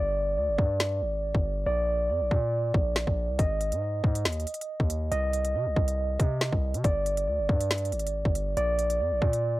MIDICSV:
0, 0, Header, 1, 4, 480
1, 0, Start_track
1, 0, Tempo, 431655
1, 1849, Time_signature, 4, 2, 24, 8
1, 10674, End_track
2, 0, Start_track
2, 0, Title_t, "Tine electric piano"
2, 0, Program_c, 0, 4
2, 0, Note_on_c, 0, 74, 98
2, 1837, Note_off_c, 0, 74, 0
2, 1851, Note_on_c, 0, 74, 105
2, 3768, Note_on_c, 0, 75, 99
2, 3770, Note_off_c, 0, 74, 0
2, 5675, Note_off_c, 0, 75, 0
2, 5688, Note_on_c, 0, 75, 102
2, 7609, Note_off_c, 0, 75, 0
2, 7610, Note_on_c, 0, 74, 98
2, 9518, Note_off_c, 0, 74, 0
2, 9531, Note_on_c, 0, 74, 108
2, 10674, Note_off_c, 0, 74, 0
2, 10674, End_track
3, 0, Start_track
3, 0, Title_t, "808-style bass"
3, 0, Program_c, 1, 38
3, 0, Note_on_c, 1, 31, 110
3, 409, Note_on_c, 1, 38, 102
3, 426, Note_off_c, 1, 31, 0
3, 536, Note_on_c, 1, 31, 102
3, 553, Note_off_c, 1, 38, 0
3, 644, Note_off_c, 1, 31, 0
3, 650, Note_on_c, 1, 43, 109
3, 1129, Note_on_c, 1, 32, 95
3, 1146, Note_off_c, 1, 43, 0
3, 1478, Note_off_c, 1, 32, 0
3, 1497, Note_on_c, 1, 31, 103
3, 1835, Note_off_c, 1, 31, 0
3, 1849, Note_on_c, 1, 34, 107
3, 2330, Note_on_c, 1, 41, 102
3, 2347, Note_off_c, 1, 34, 0
3, 2457, Note_on_c, 1, 34, 100
3, 2473, Note_off_c, 1, 41, 0
3, 2564, Note_off_c, 1, 34, 0
3, 2570, Note_on_c, 1, 46, 109
3, 3031, Note_off_c, 1, 46, 0
3, 3050, Note_on_c, 1, 34, 102
3, 3402, Note_off_c, 1, 34, 0
3, 3416, Note_on_c, 1, 34, 109
3, 3657, Note_on_c, 1, 36, 96
3, 3674, Note_off_c, 1, 34, 0
3, 3764, Note_off_c, 1, 36, 0
3, 3770, Note_on_c, 1, 32, 109
3, 4137, Note_on_c, 1, 44, 96
3, 4154, Note_off_c, 1, 32, 0
3, 4472, Note_off_c, 1, 44, 0
3, 4490, Note_on_c, 1, 44, 110
3, 4730, Note_on_c, 1, 39, 100
3, 4747, Note_off_c, 1, 44, 0
3, 4958, Note_off_c, 1, 39, 0
3, 5336, Note_on_c, 1, 39, 104
3, 5675, Note_off_c, 1, 39, 0
3, 5689, Note_on_c, 1, 36, 109
3, 6169, Note_on_c, 1, 48, 101
3, 6185, Note_off_c, 1, 36, 0
3, 6297, Note_on_c, 1, 36, 104
3, 6313, Note_off_c, 1, 48, 0
3, 6404, Note_off_c, 1, 36, 0
3, 6410, Note_on_c, 1, 36, 109
3, 6871, Note_off_c, 1, 36, 0
3, 6890, Note_on_c, 1, 48, 101
3, 7242, Note_off_c, 1, 48, 0
3, 7256, Note_on_c, 1, 36, 111
3, 7496, Note_on_c, 1, 48, 98
3, 7513, Note_off_c, 1, 36, 0
3, 7604, Note_off_c, 1, 48, 0
3, 7610, Note_on_c, 1, 31, 106
3, 8089, Note_on_c, 1, 38, 102
3, 8105, Note_off_c, 1, 31, 0
3, 8216, Note_on_c, 1, 31, 100
3, 8233, Note_off_c, 1, 38, 0
3, 8324, Note_off_c, 1, 31, 0
3, 8330, Note_on_c, 1, 43, 110
3, 8809, Note_on_c, 1, 32, 97
3, 8825, Note_off_c, 1, 43, 0
3, 9158, Note_off_c, 1, 32, 0
3, 9176, Note_on_c, 1, 31, 105
3, 9515, Note_off_c, 1, 31, 0
3, 9530, Note_on_c, 1, 34, 110
3, 10009, Note_on_c, 1, 41, 99
3, 10026, Note_off_c, 1, 34, 0
3, 10137, Note_on_c, 1, 34, 99
3, 10153, Note_off_c, 1, 41, 0
3, 10244, Note_off_c, 1, 34, 0
3, 10250, Note_on_c, 1, 46, 106
3, 10674, Note_off_c, 1, 46, 0
3, 10674, End_track
4, 0, Start_track
4, 0, Title_t, "Drums"
4, 650, Note_on_c, 9, 36, 90
4, 761, Note_off_c, 9, 36, 0
4, 890, Note_on_c, 9, 38, 118
4, 1001, Note_off_c, 9, 38, 0
4, 1497, Note_on_c, 9, 36, 88
4, 1608, Note_off_c, 9, 36, 0
4, 2570, Note_on_c, 9, 36, 88
4, 2681, Note_off_c, 9, 36, 0
4, 3050, Note_on_c, 9, 36, 97
4, 3161, Note_off_c, 9, 36, 0
4, 3290, Note_on_c, 9, 38, 119
4, 3402, Note_off_c, 9, 38, 0
4, 3416, Note_on_c, 9, 36, 85
4, 3528, Note_off_c, 9, 36, 0
4, 3769, Note_on_c, 9, 42, 80
4, 3770, Note_on_c, 9, 36, 109
4, 3880, Note_off_c, 9, 42, 0
4, 3881, Note_off_c, 9, 36, 0
4, 4011, Note_on_c, 9, 42, 71
4, 4122, Note_off_c, 9, 42, 0
4, 4137, Note_on_c, 9, 42, 78
4, 4248, Note_off_c, 9, 42, 0
4, 4490, Note_on_c, 9, 36, 87
4, 4601, Note_off_c, 9, 36, 0
4, 4617, Note_on_c, 9, 42, 77
4, 4728, Note_off_c, 9, 42, 0
4, 4729, Note_on_c, 9, 42, 51
4, 4730, Note_on_c, 9, 38, 119
4, 4810, Note_off_c, 9, 42, 0
4, 4810, Note_on_c, 9, 42, 60
4, 4841, Note_off_c, 9, 38, 0
4, 4890, Note_off_c, 9, 42, 0
4, 4890, Note_on_c, 9, 42, 61
4, 4969, Note_off_c, 9, 42, 0
4, 4969, Note_on_c, 9, 42, 72
4, 5049, Note_off_c, 9, 42, 0
4, 5049, Note_on_c, 9, 42, 76
4, 5130, Note_off_c, 9, 42, 0
4, 5130, Note_on_c, 9, 42, 84
4, 5241, Note_off_c, 9, 42, 0
4, 5336, Note_on_c, 9, 36, 86
4, 5447, Note_off_c, 9, 36, 0
4, 5448, Note_on_c, 9, 42, 91
4, 5559, Note_off_c, 9, 42, 0
4, 5690, Note_on_c, 9, 42, 83
4, 5801, Note_off_c, 9, 42, 0
4, 5931, Note_on_c, 9, 42, 75
4, 6042, Note_off_c, 9, 42, 0
4, 6056, Note_on_c, 9, 42, 79
4, 6167, Note_off_c, 9, 42, 0
4, 6410, Note_on_c, 9, 36, 89
4, 6521, Note_off_c, 9, 36, 0
4, 6537, Note_on_c, 9, 42, 79
4, 6648, Note_off_c, 9, 42, 0
4, 6890, Note_on_c, 9, 36, 97
4, 6890, Note_on_c, 9, 42, 72
4, 7001, Note_off_c, 9, 36, 0
4, 7002, Note_off_c, 9, 42, 0
4, 7130, Note_on_c, 9, 38, 122
4, 7241, Note_off_c, 9, 38, 0
4, 7256, Note_on_c, 9, 36, 86
4, 7367, Note_off_c, 9, 36, 0
4, 7498, Note_on_c, 9, 42, 69
4, 7610, Note_off_c, 9, 42, 0
4, 7610, Note_on_c, 9, 36, 109
4, 7610, Note_on_c, 9, 42, 78
4, 7721, Note_off_c, 9, 36, 0
4, 7721, Note_off_c, 9, 42, 0
4, 7851, Note_on_c, 9, 42, 75
4, 7962, Note_off_c, 9, 42, 0
4, 7976, Note_on_c, 9, 42, 78
4, 8087, Note_off_c, 9, 42, 0
4, 8330, Note_on_c, 9, 36, 94
4, 8441, Note_off_c, 9, 36, 0
4, 8457, Note_on_c, 9, 42, 76
4, 8568, Note_off_c, 9, 42, 0
4, 8570, Note_on_c, 9, 38, 116
4, 8570, Note_on_c, 9, 42, 52
4, 8650, Note_off_c, 9, 42, 0
4, 8650, Note_on_c, 9, 42, 59
4, 8681, Note_off_c, 9, 38, 0
4, 8730, Note_off_c, 9, 42, 0
4, 8730, Note_on_c, 9, 42, 65
4, 8810, Note_off_c, 9, 42, 0
4, 8810, Note_on_c, 9, 42, 68
4, 8889, Note_off_c, 9, 42, 0
4, 8889, Note_on_c, 9, 42, 75
4, 8969, Note_off_c, 9, 42, 0
4, 8969, Note_on_c, 9, 42, 82
4, 9081, Note_off_c, 9, 42, 0
4, 9176, Note_on_c, 9, 36, 87
4, 9287, Note_off_c, 9, 36, 0
4, 9287, Note_on_c, 9, 42, 90
4, 9398, Note_off_c, 9, 42, 0
4, 9529, Note_on_c, 9, 42, 80
4, 9640, Note_off_c, 9, 42, 0
4, 9771, Note_on_c, 9, 42, 72
4, 9882, Note_off_c, 9, 42, 0
4, 9896, Note_on_c, 9, 42, 75
4, 10007, Note_off_c, 9, 42, 0
4, 10250, Note_on_c, 9, 36, 89
4, 10361, Note_off_c, 9, 36, 0
4, 10377, Note_on_c, 9, 42, 74
4, 10488, Note_off_c, 9, 42, 0
4, 10674, End_track
0, 0, End_of_file